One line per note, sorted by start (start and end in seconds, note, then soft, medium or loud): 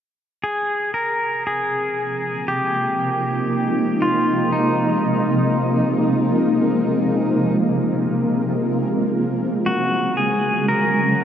0.44 0.94 G#4 medium
0.48 8.65 C3 medium
0.94 8.63 F3 medium
0.94 1.46 A#4 medium
1.43 8.62 A#3 medium
1.43 2.54 G#4 medium
1.65 11.24 G#3 medium
2.31 8.64 D#4 medium
2.48 4.08 G4 medium
4.02 4.56 F4 medium
4.52 7.56 D#4 medium
8.62 11.24 C#3 medium
9.07 11.24 F#3 medium
9.66 10.19 F#4 medium
9.92 11.24 B3 medium
10.06 11.24 E4 medium
10.17 10.68 G#4 medium
10.68 11.24 A#4 medium